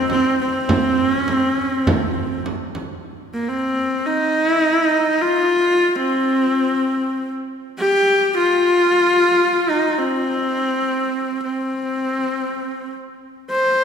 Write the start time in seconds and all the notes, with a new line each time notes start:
Already playing: C4
0.10 C4, frame drum
0.42 C4
0.69 frame drum
1.13 C#4, frame drum
1.28 frame drum
1.33 C4
1.54 C#4
1.73 C4
1.87 frame drum
2.46 frame drum
2.75 frame drum
3.34 A#3
3.48 C4
4.06 D#4
4.48 E4
4.60 D#4
4.72 E4
4.84 D#4
5.21 F4
5.96 C4
7.79 G4
8.38 F4
9.69 D#4
9.98 C4
11.44 C4
13.51 C5